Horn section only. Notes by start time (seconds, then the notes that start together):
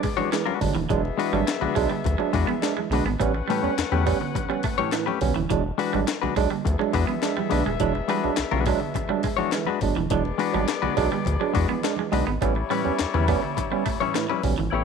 Already playing: B3 G#4 D5
0.90 B3 G#4 E5
3.19 C#4 B4 F#5
6.65 B3 G#4 E5
10.10 B3 G#4 D5
12.42 G3 E4 C#5